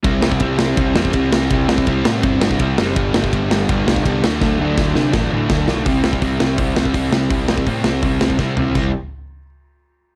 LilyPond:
<<
  \new Staff \with { instrumentName = "Overdriven electric guitar" } { \clef bass \time 4/4 \key c \lydian \tempo 4 = 165 <c g c'>8 <c g c'>8 <c g c'>8 <c g c'>8 <c g c'>8 <c g c'>8 <c g c'>8 <c g c'>8 | <c g c'>8 <c g c'>8 <c g c'>8 <c g c'>8 <c g c'>8 <c g c'>8 <c g c'>8 <c g c'>8 | <g, d g>8 <g, d g>8 <g, d g>8 <g, d g>8 <g, d g>8 <g, d g>8 <g, d g>8 <d a d'>8 | <d a d'>8 <d a d'>8 <d a d'>8 <d a d'>8 <d a d'>8 <d a d'>8 <d a d'>8 <d a d'>8 |
<c g c'>8 <c g c'>8 <c g c'>8 <c g c'>8 <c g c'>8 <c g c'>8 <c g c'>8 <c g c'>8 | <c g c'>8 <c g c'>8 <c g c'>8 <c g c'>8 <c g c'>8 <c g c'>8 <c g c'>8 <c g c'>8 | <c g c'>8 r2. r8 | }
  \new Staff \with { instrumentName = "Overdriven electric guitar" } { \clef bass \time 4/4 \key c \lydian <c g c' e'>8 <c g c' e'>8 <c g c' e'>8 <c g c' e'>8 <c g c' e'>8 <c g c' e'>8 <c g c' e'>8 <c g c' e'>8 | <c g c' e'>8 <c g c' e'>8 <c g c' e'>8 <c g c' e'>8 <c g c' e'>8 <c g c' e'>8 <c g c' e'>8 <c g c' e'>8 | <g, d g b d'>8 <g, d g b d'>8 <g, d g b d'>8 <g, d g b d'>8 <g, d g b d'>8 <g, d g b d'>8 <g, d g b d'>8 <d fis a d'>8 | <d fis a d'>8 <d fis a d'>8 <d fis a d'>8 <d fis a d'>8 <d fis a d'>8 <d fis a d'>8 <d fis a d'>8 <d fis a d'>8 |
<c g c' e'>8 <c g c' e'>8 <c g c' e'>8 <c g c' e'>8 <c g c' e'>8 <c g c' e'>8 <c g c' e'>8 <c g c' e'>8 | <c g c' e'>8 <c g c' e'>8 <c g c' e'>8 <c g c' e'>8 <c g c' e'>8 <c g c' e'>8 <c g c' e'>8 <c g c' e'>8 | <c g c' e'>8 r2. r8 | }
  \new Staff \with { instrumentName = "Picked electric bass" } { \clef bass \time 4/4 \key c \lydian c,8 c,8 c,4 c,8 e,8 c,8 c,8 | c,8 c,8 c,8 a,8 g,,8 g,8 c,8 fis,,8 | g,,8 g,,8 g,,4 g,,8 c,8 c,8 d,8 | d,8 d,8 d,8 c8 a,,8 a,8 d,8 b,,8 |
c,8 c,8 c,8 c,8 c,8 c,8 c,8 c,8 | c,8 c,8 a,8 c,8 c,8 c,8 c8 c,8 | c,8 r2. r8 | }
  \new DrumStaff \with { instrumentName = "Drums" } \drummode { \time 4/4 <bd cymr>8 sn16 bd16 <bd cymr>8 sn8 <bd cymr>8 sn16 bd16 <bd cymr>8 sn8 | <bd cymr>8 sn16 bd16 <bd cymr>8 sn8 <bd cymr>8 sn16 bd16 <bd cymr>8 sn8 | <bd cymr>8 sn16 bd16 <bd cymr>8 sn8 <bd cymr>8 sn16 bd16 <bd cymr>8 sn8 | <bd sn>4 <bd sn>8 sn8 <bd sn>4 <bd sn>8 sn8 |
<hho bd>8 sn16 bd16 <hho bd>8 sn8 <hho bd>8 sn16 bd16 <hho bd>8 sn8 | <hho bd>8 sn16 bd16 <hho bd>8 sn8 <hho bd>8 sn16 bd16 <bd sn>8 tomfh8 | <cymc bd>4 r4 r4 r4 | }
>>